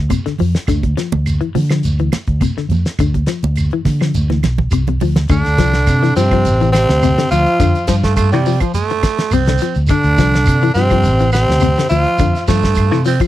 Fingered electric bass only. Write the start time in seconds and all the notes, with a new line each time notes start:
0.27 muted fingered electric bass stroke
0.41 F2
0.57 muted fingered electric bass stroke
0.68 D2
1.14 D2
1.56 D3
1.85 D2
2.14 muted fingered electric bass stroke
2.28 D2
2.57 muted fingered electric bass stroke
2.69 F2
2.85 muted fingered electric bass stroke
2.99 D2
3.43 D2
3.85 D3
4.15 D2
4.44 B1
4.72 C2
5.01 D2
5.30 D2
5.47 D2
5.58 C2
5.87 C3
6.17 G2
6.46 A1
6.89 D2
7.31 D2
7.60 F2
7.88 G2
8.33 C3
9.33 C2
9.76 D2
10.04 D2
10.18 C2
10.48 C3
10.75 G2
11.05 A1
11.48 D2
11.91 D2
12.20 F2
12.49 G2
12.92 C3